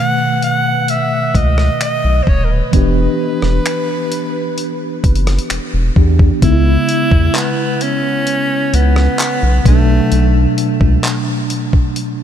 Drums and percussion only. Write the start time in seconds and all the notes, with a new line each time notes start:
0.42 closed hi-hat
0.88 closed hi-hat
1.35 kick, closed hi-hat
1.58 cross-stick
1.81 finger snap, closed hi-hat
2.27 kick
2.73 kick, closed hi-hat
3.42 cross-stick
3.66 finger snap, closed hi-hat
4.12 closed hi-hat
4.58 closed hi-hat
5.04 kick, closed hi-hat
5.16 closed hi-hat
5.27 cross-stick, closed hi-hat
5.39 closed hi-hat
5.50 finger snap, closed hi-hat
5.96 kick
6.19 kick
6.42 kick, closed hi-hat
6.89 closed hi-hat
7.12 kick
7.35 clap, closed hi-hat
7.81 closed hi-hat
8.27 closed hi-hat
8.74 closed hi-hat
8.96 cross-stick
9.19 clap, closed hi-hat
9.65 kick, closed hi-hat
10.12 closed hi-hat
10.58 closed hi-hat
10.81 kick
11.04 clap, closed hi-hat
11.50 closed hi-hat
11.73 kick
11.96 closed hi-hat